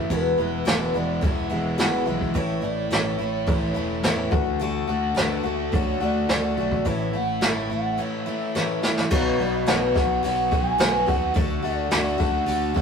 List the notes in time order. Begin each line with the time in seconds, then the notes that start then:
Already playing: E3 A3 C#4 E4
0.10 E1 E2 B2 E3 G#3 B3 E4 B4, kick, open hi-hat
0.37 E1 E3 G#3 B3 E4
0.65 E1 E2 B2 E3 G#3 B3 E4, snare
0.94 E1 E3 G#3 B3 E4 D5
1.21 E1 E3 G#3 B3 E4 E5, kick, open hi-hat
1.50 E1 E3 G#3 B3 E4 E5
1.78 E1 E2 B2 E3 G#3 B3 E4 F#5, snare, open hi-hat
2.06 B1 E3 G#3 B3 E4 E5
2.21 kick
2.34 A1 A2 E3 A3 C#4 E4, kick, open hi-hat
2.62 A1 A3 C#4 E4 D5
2.91 A1 A2 E3 A3 C#4 E4 C#5, snare, open hi-hat
3.19 A1 A3 C#4 E4
3.47 A1 E3 A3 C#4 E4, kick, open hi-hat
3.74 E1 A3 C#4 E4
4.03 E2 A2 E3 A3 C#4 E4, snare, open hi-hat
4.31 D2 D3 A3 D4 F#4, kick
4.59 D2 D3 A3 D4 F#4, open hi-hat
4.87 D2 A3 D4 F#4
5.15 D2 D3 A3 D4 F#4 B4, snare, open hi-hat
5.43 D2 A3 D4 F#4 A4
5.72 D2 D3 A3 D4 F#4 C#5, kick, open hi-hat
6.00 D2 A3 D4 F#4 D5
6.29 D2 D3 A3 D4 F#4, snare, open hi-hat
6.57 B1 A3 D4 F#4
6.72 kick
6.85 A1 A2 E3 A3 C#4 E4 E5, kick, open hi-hat
7.13 A1 A3 C#4 E4 F#5
7.41 A2 E3 A3 C#4 E4, snare, open hi-hat
7.46 E5
7.70 A1 A3 C#4 E4 F#5
7.97 E3 A3 C#4 E4 E5
8.26 A3 C#4 E4
8.55 A2 E3 A3 C#4 E4, snare
8.82 A3 C#4 E4, snare
8.97 snare
9.10 B1 B2 F#3 B3 D#4 F#4 D#5, kick, crash
9.39 B1 B3 D#4 F#4 D#5, open hi-hat
9.66 B1 B2 F#3 B3 D#4 F#4, snare, open hi-hat
9.94 B1 B3 D#4 F#4 F#5, kick, snare, open hi-hat
10.23 B1 F#3 B3 D#4 F#4 F#5, open hi-hat
10.51 B3 D#4 F#4 G#5, kick, open hi-hat
10.78 B1 B2 F#3 B3 D#4 F#4, snare, open hi-hat
11.06 D#2 B3 D#4 F#4 F#5, kick, open hi-hat
11.34 D2 D3 A3 D4 F#4 E5, kick, open hi-hat
11.62 D2 A3 D4 F#4 D5, open hi-hat
11.91 D2 D3 A3 D4 F#4 D5, snare, open hi-hat
12.18 D2 A3 D4 F#4 F#5, kick, open hi-hat
12.46 D2 D3 A3 D4 F#4, open hi-hat
12.74 D2 A3 D4 F#4, kick, open hi-hat